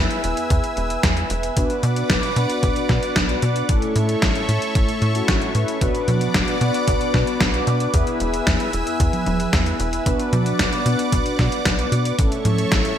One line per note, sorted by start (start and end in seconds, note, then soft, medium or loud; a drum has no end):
0.00 0.21 B3 medium
0.00 0.21 E4 medium
0.00 0.21 G#4 medium
0.00 0.21 B4 medium
0.00 1.53 B4 medium
0.00 1.55 E5 medium
0.00 1.55 G#5 medium
0.00 1.55 E6 medium
0.11 closed hi-hat soft
0.24 0.34 E1 medium
0.24 1.53 B3 medium
0.24 1.53 E4 medium
0.24 1.53 G#4 medium
0.24 1.53 B4 medium
0.24 closed hi-hat medium
0.37 closed hi-hat soft
0.50 0.61 E2 loud
0.50 kick loud
0.50 closed hi-hat medium
0.64 closed hi-hat soft
0.77 0.97 E1 medium
0.77 closed hi-hat soft
0.90 closed hi-hat soft
1.03 1.24 E2 medium
1.03 kick loud
1.03 snare loud
1.03 closed hi-hat medium
1.17 closed hi-hat soft
1.30 1.50 E1 loud
1.30 closed hi-hat medium
1.43 closed hi-hat soft
1.57 1.67 B1 loud
1.57 2.33 B3 medium
1.57 2.33 D4 medium
1.57 2.33 F#4 medium
1.57 3.67 B4 medium
1.57 2.33 B4 loud
1.57 3.67 D5 medium
1.57 3.67 F#5 medium
1.57 3.67 D6 medium
1.57 kick loud
1.57 closed hi-hat medium
1.70 closed hi-hat soft
1.83 2.03 B2 medium
1.83 closed hi-hat medium
1.96 closed hi-hat soft
2.10 2.20 B1 medium
2.10 kick loud
2.10 snare loud
2.10 closed hi-hat medium
2.23 closed hi-hat soft
2.36 2.46 B2 medium
2.36 3.66 B3 medium
2.36 3.66 D4 medium
2.36 3.66 F#4 medium
2.36 3.66 B4 loud
2.36 closed hi-hat medium
2.50 closed hi-hat soft
2.63 2.73 B1 loud
2.63 kick loud
2.63 closed hi-hat medium
2.76 closed hi-hat soft
2.89 3.00 B2 loud
2.89 kick medium
2.89 snare medium
2.89 closed hi-hat soft
3.03 closed hi-hat soft
3.16 3.36 B1 medium
3.16 kick loud
3.16 snare loud
3.16 closed hi-hat medium
3.29 closed hi-hat soft
3.42 3.63 B2 medium
3.42 closed hi-hat medium
3.56 closed hi-hat soft
3.69 3.79 A1 loud
3.69 4.46 A3 medium
3.69 4.46 C#4 medium
3.69 4.46 E4 medium
3.69 5.79 A4 medium
3.69 4.46 A4 loud
3.69 5.79 C#5 medium
3.69 5.79 E5 medium
3.69 5.79 C#6 medium
3.69 kick loud
3.69 closed hi-hat medium
3.82 closed hi-hat soft
3.96 4.16 A2 loud
3.96 closed hi-hat medium
4.09 closed hi-hat soft
4.22 4.32 A1 medium
4.22 kick loud
4.22 snare loud
4.22 closed hi-hat medium
4.35 closed hi-hat soft
4.49 4.59 A2 medium
4.49 5.12 A3 medium
4.49 5.12 C#4 medium
4.49 5.12 E4 medium
4.49 5.12 A4 medium
4.49 closed hi-hat medium
4.62 closed hi-hat soft
4.75 4.85 A1 loud
4.75 kick loud
4.75 closed hi-hat medium
4.89 closed hi-hat soft
5.02 5.22 A2 medium
5.02 closed hi-hat soft
5.15 5.52 A3 medium
5.15 5.52 C#4 medium
5.15 5.52 E4 medium
5.15 5.52 F#4 loud
5.15 closed hi-hat soft
5.28 5.38 A1 medium
5.28 kick loud
5.28 snare loud
5.28 closed hi-hat medium
5.42 closed hi-hat soft
5.55 5.65 A2 medium
5.55 5.78 A3 medium
5.55 5.78 C#4 medium
5.55 5.78 E4 medium
5.55 5.78 B4 medium
5.55 closed hi-hat medium
5.68 closed hi-hat soft
5.81 5.92 B1 loud
5.81 6.58 B3 medium
5.81 6.58 D4 medium
5.81 6.58 F#4 medium
5.81 12.15 B4 medium
5.81 6.58 B4 loud
5.81 7.92 D5 medium
5.81 7.92 F#5 medium
5.81 7.92 D6 medium
5.81 kick loud
5.81 closed hi-hat medium
5.95 closed hi-hat soft
6.08 6.28 B2 medium
6.08 closed hi-hat medium
6.08 high conga medium
6.21 closed hi-hat soft
6.34 6.45 B1 medium
6.34 kick loud
6.34 snare loud
6.34 closed hi-hat medium
6.48 closed hi-hat soft
6.61 6.71 B2 medium
6.61 7.91 B3 loud
6.61 7.91 D4 medium
6.61 7.91 F#4 medium
6.61 7.91 B4 loud
6.61 closed hi-hat medium
6.74 closed hi-hat soft
6.88 6.98 B1 loud
6.88 kick loud
6.88 closed hi-hat medium
7.01 closed hi-hat soft
7.14 7.24 B2 loud
7.14 kick medium
7.14 snare medium
7.14 closed hi-hat soft
7.27 closed hi-hat soft
7.41 7.61 B1 medium
7.41 kick loud
7.41 snare loud
7.41 closed hi-hat medium
7.54 closed hi-hat soft
7.67 7.88 B2 medium
7.67 closed hi-hat medium
7.80 closed hi-hat soft
7.94 8.04 E2 loud
7.94 8.70 B3 medium
7.94 8.70 E4 medium
7.94 8.70 G#4 medium
7.94 8.70 B4 loud
7.94 10.04 E5 medium
7.94 10.04 G#5 medium
7.94 10.04 E6 medium
7.94 kick loud
7.94 closed hi-hat medium
8.07 closed hi-hat soft
8.20 8.41 E1 medium
8.20 closed hi-hat medium
8.34 closed hi-hat soft
8.47 8.57 E2 medium
8.47 kick loud
8.47 snare loud
8.47 closed hi-hat medium
8.60 closed hi-hat soft
8.73 8.84 E1 medium
8.73 10.03 B3 medium
8.73 10.03 E4 medium
8.73 10.03 G#4 medium
8.73 10.03 B4 medium
8.73 closed hi-hat medium
8.87 closed hi-hat soft
9.00 9.10 E2 loud
9.00 kick loud
9.00 closed hi-hat medium
9.13 closed hi-hat soft
9.13 high conga medium
9.26 9.47 E1 medium
9.26 closed hi-hat soft
9.26 high conga medium
9.40 closed hi-hat soft
9.53 9.73 E2 medium
9.53 kick loud
9.53 snare loud
9.53 closed hi-hat medium
9.66 closed hi-hat soft
9.79 10.00 E1 loud
9.79 closed hi-hat medium
9.93 closed hi-hat soft
10.06 10.16 B1 loud
10.06 10.83 B3 loud
10.06 10.83 D4 medium
10.06 10.83 F#4 medium
10.06 10.83 B4 loud
10.06 12.16 D5 medium
10.06 12.16 F#5 medium
10.06 12.16 D6 medium
10.06 kick loud
10.06 closed hi-hat medium
10.19 closed hi-hat soft
10.33 10.53 B2 medium
10.33 closed hi-hat medium
10.33 high conga medium
10.46 closed hi-hat soft
10.59 10.69 B1 medium
10.59 kick loud
10.59 snare loud
10.59 closed hi-hat medium
10.73 closed hi-hat soft
10.86 10.96 B2 medium
10.86 12.15 B3 loud
10.86 12.15 D4 medium
10.86 12.15 F#4 medium
10.86 12.15 B4 loud
10.86 closed hi-hat medium
10.99 closed hi-hat soft
11.12 11.23 B1 loud
11.12 kick loud
11.12 closed hi-hat medium
11.26 closed hi-hat soft
11.39 11.49 B2 loud
11.39 kick medium
11.39 snare medium
11.39 closed hi-hat soft
11.52 closed hi-hat soft
11.65 11.86 B1 medium
11.65 kick loud
11.65 snare loud
11.65 closed hi-hat medium
11.79 closed hi-hat soft
11.92 12.12 B2 medium
11.92 closed hi-hat medium
12.05 closed hi-hat soft
12.19 12.29 A1 loud
12.19 12.95 A3 medium
12.19 12.95 C#4 medium
12.19 12.95 E4 medium
12.19 12.98 A4 medium
12.19 12.95 A4 loud
12.19 12.98 C#5 medium
12.19 12.98 E5 medium
12.19 12.98 C#6 medium
12.19 kick loud
12.19 closed hi-hat loud
12.32 closed hi-hat soft
12.45 12.65 A2 loud
12.45 closed hi-hat medium
12.45 high conga medium
12.58 closed hi-hat soft
12.72 12.82 A1 medium
12.72 kick loud
12.72 snare loud
12.72 closed hi-hat medium
12.85 closed hi-hat soft